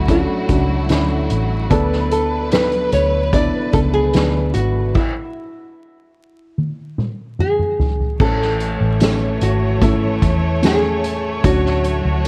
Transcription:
Already playing: fingered electric bass D2, felt piano A2 C#4 D4 F#4 A4, string section F#3 A3 E4 F#4, nylon-string guitar A4
0.08 felt piano C#4 D4 A4, nylon-string guitar F#4, kick, closed hi-hat
0.49 fingered electric bass C#2, felt piano C#4 D4 F#4, kick, closed hi-hat
0.89 fingered electric bass D2, felt piano C#4 D4 E4, nylon-string guitar E4, snare, closed hi-hat
1.30 fingered electric bass A1, closed hi-hat
1.70 fingered electric bass D2, felt piano D3 B3 D4 A4, string section B4, kick, closed hi-hat
1.92 snare
2.11 nylon-string guitar A4, closed hi-hat
2.51 felt piano B3 D4 A4, nylon-string guitar B4, snare, closed hi-hat
2.72 closed hi-hat
2.92 fingered electric bass D2, nylon-string guitar C#5, closed hi-hat
3.33 felt piano B3 D4 E4, nylon-string guitar D5, kick, closed hi-hat
3.73 fingered electric bass C#2, felt piano B3 D4 A4, nylon-string guitar A4, kick, closed hi-hat
3.93 nylon-string guitar G#4
4.13 fingered electric bass D2, felt piano B3 D4 B4, snare, closed hi-hat
4.54 fingered electric bass G#1, nylon-string guitar F#4, closed hi-hat
4.95 nylon-string guitar E4, kick, crash
6.58 high tom
6.98 mid tom
7.39 nylon-string guitar G#4, mid tom
7.59 mid tom
7.79 floor tom
8.00 floor tom
8.19 fingered electric bass A1, felt piano A2 E3 A3 C#4 A4, string section E3 A3 C#5, nylon-string guitar A4, kick, crash
8.42 snare
8.60 closed hi-hat
8.81 fingered electric bass A1
9.00 felt piano A3 C#4 A4, snare, closed hi-hat, tambourine
9.41 fingered electric bass G#1, nylon-string guitar F#4, closed hi-hat
9.82 felt piano A3 C#4 A4, nylon-string guitar E4, kick, closed hi-hat
10.22 fingered electric bass E2, kick, closed hi-hat
10.62 felt piano A3 C#4 G#4, nylon-string guitar G#4, snare, closed hi-hat, tambourine
11.04 closed hi-hat
11.44 fingered electric bass D2, felt piano A2 C#4 D4 F#4, string section F#3 F#4, nylon-string guitar F#4, kick, closed hi-hat
11.66 snare
11.84 closed hi-hat
12.05 fingered electric bass D2
12.25 tambourine

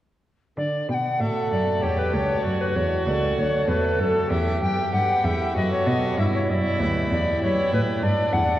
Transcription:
0.57 cello D3, pipe organ D3, recorder D5
0.89 cello B2, pipe organ B2, recorder G5
0.93 recorder F#5
1.20 cello A2, pipe organ A2 A3 F#4 A4, violin A4, recorder E5
1.51 cello F#2, pipe organ F#2, recorder D5
1.82 cello E2, pipe organ E2 A3 G4 A4, violin G4, recorder C#5
1.98 recorder B4
2.13 cello C#2, pipe organ C#2, recorder C#5
2.44 cello F#2, pipe organ F#2, violin F#4, recorder D5
2.61 recorder B4
2.76 pipe organ E2, cello E2, recorder C#5
3.06 cello C#2, pipe organ C#2 A3 F#4 A4, recorder D5
3.37 cello D2, pipe organ D2, recorder C#5
3.68 cello E2, pipe organ E2 A3 F#4 A4, violin A4, recorder B4
3.99 cello F#2, pipe organ F#2, recorder A4
4.30 cello E2, pipe organ E2, violin G4, recorder E5
4.61 cello F#2, pipe organ F#2, recorder G5
4.92 cello G2, pipe organ G2 G4 B4, recorder F#5
5.24 cello E2, pipe organ E2, recorder E5
5.56 cello F#2, pipe organ F#2 B3 A4 B4, violin F#4, recorder D#5
5.71 recorder C#5
5.86 cello B2, pipe organ B2, recorder D#5
6.18 cello G2, pipe organ G2, violin E4, recorder E5
6.34 recorder C#5
6.49 cello F#2, pipe organ F#2, recorder D5 D#5
6.80 cello D2, pipe organ D2 B3 G4 B4, recorder E5
7.11 cello E2, pipe organ E2, recorder D5
7.42 cello F#2, pipe organ F#2 B3 G4 B4, violin E4, recorder C#5
7.73 cello A2, pipe organ A2, recorder B4
8.02 cello G2, pipe organ G2, violin D4, recorder D5
8.33 cello E2, pipe organ E2, recorder F#5

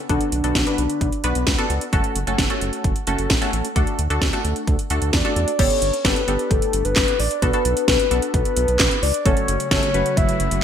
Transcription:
0.09 analog synth bass B1, analog polysynth B3 D4 F#4 A4, soft synth lead D4, kick, closed hi-hat
0.21 closed hi-hat
0.32 analog synth bass B1, soft synth lead D4, closed hi-hat
0.44 analog synth bass B1, analog polysynth B3 D4 F#4 A4, closed hi-hat
0.55 analog synth bass B1, kick, snare, closed hi-hat
0.67 analog polysynth B3 D4 F#4 B4, closed hi-hat
0.78 analog synth bass B1, closed hi-hat
0.90 closed hi-hat
1.01 analog synth bass B1, kick, closed hi-hat
1.12 closed hi-hat
1.24 analog synth bass B1, analog polysynth B3 D4 F#4 B4, closed hi-hat
1.35 analog synth bass B1, closed hi-hat
1.47 analog synth bass C#2, kick, snare, closed hi-hat
1.58 analog polysynth B3 D4 F#4 A4, closed hi-hat
1.70 analog synth bass C#2, closed hi-hat
1.81 closed hi-hat
1.93 analog synth bass F#1, analog polysynth A3 C#4 F#4 A4, kick, closed hi-hat
2.04 closed hi-hat
2.16 analog synth bass F#1, closed hi-hat
2.27 analog synth bass F#1, analog polysynth A3 C#4 F#4 A4, closed hi-hat
2.38 analog synth bass F#1, kick, snare, closed hi-hat
2.50 analog polysynth A3 C#4 F#4 A4, closed hi-hat
2.61 analog synth bass F#1, closed hi-hat
2.73 closed hi-hat
2.84 analog synth bass F#1, kick, closed hi-hat
2.96 closed hi-hat
3.07 analog synth bass F#1, analog polysynth A3 C#4 F#4 A4, closed hi-hat
3.18 analog synth bass F#1, closed hi-hat
3.30 analog synth bass A1, kick, snare, closed hi-hat
3.42 analog polysynth A3 C#4 F#4 A4, closed hi-hat
3.53 analog synth bass A1, closed hi-hat
3.65 closed hi-hat
3.76 analog synth bass D2, analog polysynth A3 D4 F#4 A4, kick, closed hi-hat
3.87 closed hi-hat
3.99 analog synth bass D2, closed hi-hat
4.10 analog synth bass D2, analog polysynth A3 D4 F#4 A4, closed hi-hat
4.22 analog synth bass D2, kick, snare, closed hi-hat
4.33 analog polysynth A3 D4 F#4 A4, closed hi-hat
4.45 analog synth bass D2, closed hi-hat
4.56 closed hi-hat
4.68 analog synth bass D2, kick, closed hi-hat
4.79 closed hi-hat
4.90 analog synth bass D2, analog polysynth A3 D4 F#4 A4, closed hi-hat
5.02 analog synth bass D2, closed hi-hat
5.13 analog synth bass E2, soft synth lead D5, kick, snare, closed hi-hat
5.25 analog polysynth A3 D4 F#4 A4, closed hi-hat
5.36 analog synth bass E2, closed hi-hat
5.48 closed hi-hat
5.59 analog synth bass G1, analog polysynth B3 D4 G4 A4, soft synth lead C#5, kick, closed hi-hat, crash
5.70 closed hi-hat
5.82 analog synth bass G1, closed hi-hat
5.94 closed hi-hat
6.05 analog synth bass G1, analog polysynth B3 D4 G4 A4, soft synth lead B4, kick, snare, closed hi-hat
6.16 closed hi-hat
6.28 analog synth bass G1, analog polysynth B3 D4 G4 A4, closed hi-hat
6.39 closed hi-hat
6.51 analog synth bass G1, soft synth lead A4, kick, closed hi-hat
6.62 closed hi-hat
6.73 analog synth bass G1, closed hi-hat
6.85 analog synth bass G1, soft synth lead B4, closed hi-hat
6.96 analog synth bass G1, kick, snare, clap, closed hi-hat
7.08 closed hi-hat
7.19 analog synth bass A1, soft synth lead D5, open hi-hat
7.31 closed hi-hat
7.42 analog synth bass B1, analog polysynth B3 D4 F#4 A4, soft synth lead B4, kick, closed hi-hat
7.53 analog polysynth B3 D4 F#4 A4, closed hi-hat
7.65 analog synth bass B1, closed hi-hat
7.77 closed hi-hat
7.88 analog synth bass B1, soft synth lead B4, kick, snare, closed hi-hat
7.99 closed hi-hat
8.11 analog synth bass B1, analog polysynth B3 D4 F#4 A4, closed hi-hat
8.22 closed hi-hat
8.34 analog synth bass B1, soft synth lead B4, kick, closed hi-hat
8.45 closed hi-hat
8.57 analog synth bass B1, closed hi-hat
8.68 analog synth bass B1, closed hi-hat
8.80 analog synth bass B1, kick, snare, clap, closed hi-hat
8.91 closed hi-hat
9.03 analog synth bass C#2, soft synth lead D5, open hi-hat
9.14 closed hi-hat
9.26 analog synth bass F#1, string machine C#3 F#3 A3 F#4, analog polysynth A3 C#4 F#4 A4, soft synth lead C#5, kick, closed hi-hat
9.37 closed hi-hat
9.48 analog synth bass F#1, closed hi-hat
9.60 closed hi-hat
9.71 analog synth bass F#1, analog polysynth A3 C#4 F#4 A4, soft synth lead C#5, kick, snare, closed hi-hat
9.83 closed hi-hat
9.94 analog synth bass F#1, analog polysynth A3 C#4 F#4 B4, closed hi-hat
10.06 closed hi-hat
10.17 analog synth bass F#1, soft synth lead E5, kick, closed hi-hat
10.29 closed hi-hat
10.40 analog synth bass F#1, closed hi-hat
10.51 analog synth bass F#1, closed hi-hat

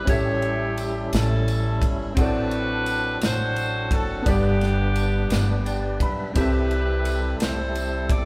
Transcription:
0.05 upright bass A1, tonewheel organ G3 C#4 E4 A4, grand piano C#4 G4, saxophone section E4 G4 C#5, kick, ride, tambourine
0.09 grand piano A2 A4 E5
0.42 ride
0.78 ride, tambourine
1.13 upright bass A1, saxophone section C#4 E4 A4, snare, ride, tambourine
1.48 ride, tambourine
1.82 upright bass G1, kick, ride
2.15 upright bass A1, grand piano A2 C4 F#4, tonewheel organ F#3 C4 D4 G#4, kick, ride, tambourine
2.19 saxophone section D4 F#4 B4, grand piano A4 D5
2.24 tonewheel organ A4
2.51 ride
2.86 ride, tambourine
3.22 upright bass A1, saxophone section F#4 C5, snare, ride, tambourine
3.56 ride, tambourine
3.91 upright bass F#1, saxophone section A4, kick, ride
4.22 upright bass G1, grand piano G2 B3 D4, tonewheel organ B3 B4, kick, ride
4.27 tonewheel organ G3 D4, saxophone section B3 D4 G4, grand piano G4 D5, tambourine
4.61 snare, ride
4.96 ride, tambourine
5.30 upright bass G1, snare, ride, tambourine
5.65 tonewheel organ D5, grand piano G5, ride, tambourine
6.00 upright bass B1, tonewheel organ E5, grand piano B5, kick, ride
6.34 upright bass C2, grand piano C3 C4 G4, tonewheel organ G3 C4 E4 A4, kick, ride, tambourine
6.38 saxophone section E4 G4 B4, grand piano A4 E5
6.71 ride
7.05 ride, tambourine
7.40 upright bass C2, saxophone section E4 C5, snare, ride, tambourine
7.45 saxophone section A4
7.75 ride, tambourine
8.10 upright bass G1, saxophone section D5, kick, ride

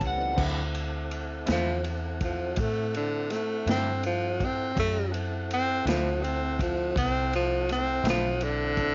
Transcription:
Already playing: fingered electric bass C#2, tonewheel organ E3 C#4 G4 B4
0.01 kick, ride
0.07 tonewheel organ G3 A3, electric slide guitar F#5
0.13 tonewheel organ B3 C4
0.18 tonewheel organ D4 E4
0.24 tonewheel organ F4 G4
0.29 tonewheel organ A4 B4
0.35 fingered electric bass D2, clean electric guitar D3 F#3 C4 E4, tonewheel organ C4 E4 A4 C5 F#5, kick, crash
0.75 ride
1.11 ride
1.46 fingered electric bass E2, clean electric guitar D3 F#3 C4 E4, snare, ride
1.52 tenor saxophone F3
1.84 ride
2.21 tenor saxophone F3, kick, ride
2.56 fingered electric bass A2, tenor saxophone A3, kick, ride
2.94 tenor saxophone D3, ride
3.30 tenor saxophone A3, snare, ride
3.66 fingered electric bass G2, clean electric guitar D3 F#3 C4 E4, tenor saxophone C4, snare, ride
4.03 tenor saxophone F3, ride
4.40 kick, ride
4.45 tenor saxophone C4
4.75 fingered electric bass F#2, tonewheel organ C#4 F4 G4 A#5, kick, ride
4.80 tenor saxophone A3
5.11 tonewheel organ C4 E4 A4 F#5, ride
5.51 tenor saxophone C4, ride
5.85 fingered electric bass D2, clean electric guitar D3 F#3 C4 E4, tenor saxophone F3, snare, ride
6.23 tenor saxophone C4, ride
6.59 tenor saxophone F3, kick, ride
6.95 fingered electric bass C2, tenor saxophone C4, kick, ride
7.33 tenor saxophone F3, ride
7.69 tenor saxophone C4, snare, ride
8.04 fingered electric bass B1, clean electric guitar D3 F#3 C4 E4, snare, ride
8.10 tenor saxophone F3
8.41 tenor saxophone D3, ride
8.77 kick, ride

